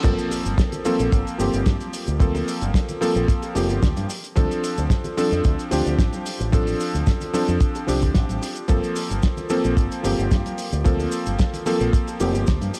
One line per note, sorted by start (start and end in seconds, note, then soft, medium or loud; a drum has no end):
0.03 0.13 G1 loud
0.03 0.82 F3 medium
0.03 0.82 A#3 medium
0.03 0.82 C4 medium
0.03 0.83 A4 medium
0.03 kick loud
0.03 closed hi-hat medium
0.03 crash loud
0.03 impact medium
0.03 high bongo medium
0.03 high conga medium
0.03 cabasa medium
0.03 maracas soft
0.19 closed hi-hat medium
0.19 cabasa soft
0.19 maracas soft
0.30 open hi-hat loud
0.30 high bongo medium
0.30 cabasa medium
0.30 maracas loud
0.45 0.54 G1 medium
0.45 closed hi-hat medium
0.45 high conga medium
0.45 cabasa medium
0.45 maracas soft
0.58 kick loud
0.58 snare loud
0.58 closed hi-hat medium
0.58 cabasa medium
0.58 maracas medium
0.72 closed hi-hat medium
0.72 high bongo medium
0.72 low conga medium
0.72 cabasa soft
0.72 maracas soft
0.85 1.36 F3 medium
0.85 1.36 A#3 medium
0.85 1.36 C4 medium
0.85 1.37 A4 loud
0.85 open hi-hat loud
0.85 high conga loud
0.85 cabasa medium
0.85 maracas loud
0.99 1.08 A#1 medium
0.99 closed hi-hat medium
0.99 high bongo medium
0.99 cabasa medium
0.99 maracas soft
1.12 1.22 G1 loud
1.12 kick loud
1.12 closed hi-hat medium
1.12 cabasa medium
1.12 maracas soft
1.27 closed hi-hat medium
1.27 cabasa soft
1.27 maracas soft
1.38 1.48 G1 loud
1.38 2.17 F3 medium
1.38 2.17 A#3 medium
1.38 2.18 C4 medium
1.38 2.18 G4 medium
1.38 open hi-hat loud
1.38 high bongo medium
1.38 high conga medium
1.38 cabasa medium
1.38 maracas medium
1.53 1.62 G1 loud
1.53 closed hi-hat medium
1.53 cabasa soft
1.53 maracas soft
1.66 1.76 G2 medium
1.66 kick loud
1.66 snare loud
1.66 closed hi-hat medium
1.66 high bongo medium
1.66 cabasa medium
1.66 maracas medium
1.80 closed hi-hat medium
1.80 high conga medium
1.80 cabasa soft
1.80 maracas soft
1.93 open hi-hat loud
1.93 cabasa medium
1.93 maracas loud
2.07 2.40 D2 loud
2.07 closed hi-hat medium
2.07 high bongo medium
2.07 cabasa soft
2.07 maracas soft
2.19 2.98 F3 medium
2.19 2.98 A#3 medium
2.19 2.99 C4 medium
2.19 2.99 A4 loud
2.19 kick loud
2.19 closed hi-hat medium
2.19 high conga loud
2.19 cabasa soft
2.19 maracas soft
2.35 open hi-hat medium
2.35 high bongo medium
2.35 cabasa soft
2.35 maracas soft
2.48 open hi-hat loud
2.48 cabasa medium
2.48 maracas loud
2.61 2.70 G1 medium
2.61 closed hi-hat medium
2.61 high conga medium
2.61 cabasa soft
2.61 maracas soft
2.74 kick loud
2.74 snare loud
2.74 closed hi-hat medium
2.74 high bongo medium
2.74 cabasa medium
2.74 maracas soft
2.89 closed hi-hat medium
2.89 low conga loud
2.89 cabasa soft
2.89 maracas soft
3.01 3.52 F3 medium
3.01 3.52 A#3 medium
3.01 3.52 C4 medium
3.01 3.53 A4 loud
3.01 open hi-hat loud
3.01 high bongo medium
3.01 high conga medium
3.01 cabasa medium
3.01 maracas medium
3.16 3.24 A#1 loud
3.16 closed hi-hat medium
3.16 cabasa soft
3.16 maracas soft
3.28 kick loud
3.28 closed hi-hat medium
3.28 cabasa medium
3.28 maracas medium
3.42 closed hi-hat medium
3.42 high bongo medium
3.42 cabasa soft
3.42 maracas soft
3.55 3.70 F1 medium
3.55 4.08 F3 medium
3.55 4.08 A#3 medium
3.55 4.08 C4 medium
3.55 4.08 G4 medium
3.55 open hi-hat loud
3.55 high conga medium
3.55 cabasa medium
3.55 maracas loud
3.70 3.78 G1 loud
3.70 closed hi-hat medium
3.70 high bongo medium
3.70 cabasa soft
3.70 maracas soft
3.82 3.92 D2 medium
3.82 kick loud
3.82 snare loud
3.82 closed hi-hat medium
3.82 cabasa medium
3.82 maracas medium
3.96 4.05 G2 medium
3.96 closed hi-hat medium
3.96 high conga medium
3.96 cabasa soft
3.96 maracas soft
4.09 open hi-hat loud
4.09 high bongo medium
4.09 cabasa medium
4.09 maracas loud
4.24 closed hi-hat medium
4.24 cabasa soft
4.24 maracas soft
4.35 4.46 D2 loud
4.35 5.14 F3 medium
4.35 5.14 C4 medium
4.35 5.15 D4 medium
4.35 5.15 A4 loud
4.35 kick loud
4.35 closed hi-hat medium
4.35 high bongo medium
4.35 high conga loud
4.35 cabasa medium
4.35 maracas medium
4.51 closed hi-hat medium
4.51 cabasa soft
4.51 maracas soft
4.64 open hi-hat loud
4.64 cabasa medium
4.64 maracas medium
4.78 4.86 D2 medium
4.78 closed hi-hat medium
4.78 high bongo soft
4.78 high conga medium
4.78 cabasa medium
4.78 maracas soft
4.90 kick loud
4.90 snare loud
4.90 closed hi-hat medium
4.90 cabasa medium
4.90 maracas medium
5.04 closed hi-hat medium
5.04 high bongo medium
5.04 low conga loud
5.04 cabasa soft
5.04 maracas soft
5.17 5.68 F3 medium
5.17 5.69 C4 medium
5.17 5.69 D4 medium
5.17 5.69 A4 loud
5.17 open hi-hat loud
5.17 high conga loud
5.17 cabasa medium
5.17 maracas medium
5.32 5.40 F2 loud
5.32 closed hi-hat medium
5.32 cabasa soft
5.32 maracas soft
5.44 5.54 D2 medium
5.44 kick loud
5.44 closed hi-hat medium
5.44 high bongo medium
5.44 cabasa medium
5.44 maracas medium
5.59 closed hi-hat medium
5.59 cabasa soft
5.71 5.81 D2 loud
5.71 6.49 F3 medium
5.71 6.50 C4 medium
5.71 6.50 D4 medium
5.71 6.50 G4 medium
5.71 open hi-hat loud
5.71 high bongo medium
5.71 high conga medium
5.71 cabasa medium
5.71 maracas medium
5.86 5.94 D2 loud
5.86 closed hi-hat medium
5.86 cabasa medium
5.86 maracas soft
5.98 6.08 A1 medium
5.98 kick loud
5.98 snare loud
5.98 closed hi-hat medium
5.98 cabasa medium
5.98 maracas medium
6.12 closed hi-hat medium
6.12 high bongo soft
6.12 high conga medium
6.12 cabasa soft
6.12 maracas soft
6.26 open hi-hat loud
6.26 cabasa medium
6.26 maracas medium
6.40 6.73 A1 medium
6.40 closed hi-hat soft
6.40 high bongo medium
6.40 cabasa soft
6.40 maracas soft
6.52 7.30 F3 medium
6.52 7.31 C4 medium
6.52 7.31 D4 medium
6.52 7.32 A4 loud
6.52 kick loud
6.52 closed hi-hat medium
6.52 high conga medium
6.52 cabasa medium
6.52 maracas medium
6.67 open hi-hat medium
6.67 cabasa soft
6.67 maracas soft
6.80 open hi-hat loud
6.80 high bongo medium
6.80 cabasa medium
6.80 maracas medium
6.93 7.03 D2 medium
6.93 closed hi-hat medium
6.93 high conga medium
6.93 cabasa soft
6.93 maracas soft
7.06 kick loud
7.06 snare loud
7.06 closed hi-hat medium
7.06 high bongo medium
7.06 cabasa medium
7.06 maracas medium
7.21 closed hi-hat medium
7.21 low conga medium
7.21 cabasa soft
7.21 maracas soft
7.33 7.85 F3 medium
7.33 7.85 C4 medium
7.33 7.85 D4 medium
7.33 7.85 A4 loud
7.33 open hi-hat loud
7.33 high conga loud
7.33 cabasa medium
7.33 maracas medium
7.48 7.56 F2 medium
7.48 closed hi-hat medium
7.48 high bongo medium
7.48 cabasa soft
7.48 maracas soft
7.60 kick loud
7.60 closed hi-hat medium
7.60 cabasa medium
7.60 maracas soft
7.74 closed hi-hat medium
7.74 high bongo medium
7.74 cabasa soft
7.74 maracas soft
7.87 8.03 C2 loud
7.87 8.65 F3 medium
7.87 8.66 C4 medium
7.87 8.66 D4 medium
7.87 8.66 G4 medium
7.87 open hi-hat loud
7.87 high conga medium
7.87 cabasa medium
7.87 maracas medium
8.02 8.11 D2 loud
8.02 kick medium
8.02 closed hi-hat medium
8.02 cabasa medium
8.02 maracas soft
8.14 8.24 A1 medium
8.14 kick loud
8.14 snare loud
8.14 closed hi-hat medium
8.14 high bongo soft
8.14 cabasa medium
8.14 maracas medium
8.29 8.38 A1 medium
8.29 closed hi-hat medium
8.29 high conga loud
8.29 cabasa soft
8.29 maracas soft
8.42 open hi-hat loud
8.42 high bongo medium
8.42 cabasa medium
8.42 maracas medium
8.56 closed hi-hat medium
8.56 cabasa soft
8.56 maracas soft
8.68 8.78 G1 medium
8.68 9.47 F3 medium
8.68 9.47 A#3 medium
8.68 9.47 C4 medium
8.68 9.48 A4 medium
8.68 kick loud
8.68 closed hi-hat medium
8.68 high bongo medium
8.68 high conga medium
8.68 cabasa medium
8.68 maracas medium
8.82 closed hi-hat medium
8.82 cabasa soft
8.82 maracas soft
8.95 open hi-hat loud
8.95 high bongo medium
8.95 cabasa medium
8.95 maracas medium
9.09 9.19 G1 medium
9.09 closed hi-hat medium
9.09 high conga medium
9.09 cabasa medium
9.09 maracas soft
9.22 kick loud
9.22 snare loud
9.22 closed hi-hat medium
9.22 cabasa medium
9.22 maracas medium
9.37 closed hi-hat medium
9.37 high bongo soft
9.37 low conga medium
9.37 cabasa soft
9.37 maracas soft
9.49 10.01 F3 medium
9.49 10.01 A#3 medium
9.49 10.01 C4 medium
9.49 10.01 A4 loud
9.49 open hi-hat loud
9.49 high conga medium
9.49 cabasa medium
9.49 maracas medium
9.64 9.73 A#1 loud
9.64 closed hi-hat medium
9.64 high bongo medium
9.64 cabasa medium
9.64 maracas soft
9.76 9.86 G1 medium
9.76 kick loud
9.76 closed hi-hat medium
9.76 cabasa medium
9.76 maracas soft
9.91 closed hi-hat medium
9.91 cabasa soft
9.91 maracas soft
10.03 10.13 G1 loud
10.03 10.82 F3 medium
10.03 10.82 A#3 medium
10.03 10.82 C4 medium
10.03 10.83 G4 medium
10.03 open hi-hat loud
10.03 high bongo medium
10.03 high conga medium
10.03 cabasa medium
10.03 maracas medium
10.18 10.27 G1 loud
10.18 closed hi-hat medium
10.18 cabasa soft
10.18 maracas soft
10.31 10.40 G2 medium
10.31 kick loud
10.31 snare loud
10.31 closed hi-hat medium
10.31 high bongo medium
10.31 cabasa medium
10.31 maracas medium
10.46 closed hi-hat medium
10.46 high conga medium
10.46 cabasa soft
10.46 maracas soft
10.58 open hi-hat loud
10.58 cabasa medium
10.58 maracas loud
10.72 11.05 D2 loud
10.72 closed hi-hat medium
10.72 high bongo soft
10.72 cabasa medium
10.72 maracas soft
10.84 11.63 F3 medium
10.84 11.63 A#3 medium
10.84 11.64 C4 medium
10.84 11.64 A4 loud
10.84 kick loud
10.84 closed hi-hat medium
10.84 high conga medium
10.84 cabasa medium
10.84 maracas medium
11.00 open hi-hat medium
11.00 high bongo medium
11.00 cabasa soft
11.00 maracas soft
11.12 open hi-hat loud
11.12 cabasa medium
11.12 maracas loud
11.26 11.35 G1 medium
11.26 closed hi-hat medium
11.26 high conga medium
11.26 cabasa medium
11.26 maracas soft
11.39 kick loud
11.39 snare loud
11.39 closed hi-hat medium
11.39 high bongo soft
11.39 cabasa medium
11.39 maracas medium
11.54 closed hi-hat medium
11.54 low conga medium
11.54 cabasa soft
11.54 maracas soft
11.66 12.17 F3 medium
11.66 12.17 A#3 medium
11.66 12.17 C4 medium
11.66 12.18 A4 loud
11.66 open hi-hat loud
11.66 high bongo medium
11.66 high conga loud
11.66 cabasa medium
11.66 maracas loud
11.80 11.89 A#1 loud
11.80 closed hi-hat medium
11.80 cabasa soft
11.80 maracas soft
11.93 kick loud
11.93 closed hi-hat medium
11.93 cabasa medium
11.93 maracas medium
12.07 closed hi-hat medium
12.07 high bongo soft
12.07 cabasa soft
12.07 maracas soft
12.20 12.35 F1 loud
12.20 12.73 F3 medium
12.20 12.73 A#3 medium
12.20 12.73 C4 medium
12.20 12.73 G4 medium
12.20 open hi-hat loud
12.20 high conga medium
12.20 cabasa medium
12.20 maracas medium
12.34 12.43 G1 loud
12.34 closed hi-hat medium
12.34 high bongo medium
12.34 cabasa medium
12.34 maracas soft
12.47 12.57 D2 medium
12.47 kick loud
12.47 snare loud
12.47 closed hi-hat medium
12.47 cabasa medium
12.47 maracas medium
12.61 12.70 G2 loud
12.61 closed hi-hat medium
12.61 high conga medium
12.61 cabasa soft
12.61 maracas soft
12.74 open hi-hat loud
12.74 high bongo medium
12.74 cabasa medium
12.74 maracas loud